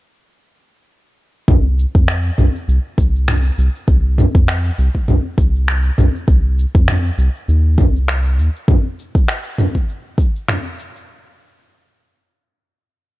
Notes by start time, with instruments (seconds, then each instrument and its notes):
1.48 analog synth bass C2, kick, mid tom, cabasa
1.79 cabasa
1.95 analog synth bass F2, kick, cabasa
2.08 finger snap, cabasa
2.26 cabasa
2.38 analog synth bass C2, mid tom, cabasa
2.56 cabasa
2.68 analog synth bass C2, cabasa
2.98 analog synth bass C2, kick, cabasa
3.16 cabasa
3.28 finger snap, mid tom, cabasa
3.46 cabasa
3.58 analog synth bass C2, cabasa
3.76 cabasa
3.88 analog synth bass C2, kick, cabasa
4.18 mid tom, cabasa
4.35 analog synth bass F2, kick, cabasa
4.48 finger snap, cabasa
4.66 cabasa
4.78 analog synth bass C2, cabasa
4.95 kick, cabasa
5.08 analog synth bass C2, mid tom, cabasa
5.38 analog synth bass C2, kick, cabasa
5.56 cabasa
5.68 finger snap, cabasa
5.86 cabasa
5.98 analog synth bass C2, mid tom, cabasa
6.16 cabasa
6.28 analog synth bass C2, kick, cabasa
6.59 cabasa
6.75 analog synth bass F2, kick, cabasa
6.88 finger snap, mid tom, cabasa
7.05 cabasa
7.18 analog synth bass C2, cabasa
7.36 cabasa
7.48 analog synth bass D#2, cabasa
7.78 analog synth bass C2, kick, mid tom, cabasa
7.96 cabasa
8.08 finger snap, cabasa
8.26 cabasa
8.38 analog synth bass D#2, cabasa
8.56 cabasa
8.68 kick, mid tom, cabasa
8.99 cabasa
9.15 kick, cabasa
9.28 finger snap, cabasa
9.46 cabasa
9.58 mid tom, cabasa
9.75 kick, cabasa
9.89 cabasa
10.18 kick, cabasa
10.36 cabasa
10.48 finger snap, mid tom, cabasa
10.66 cabasa
10.79 cabasa
10.96 cabasa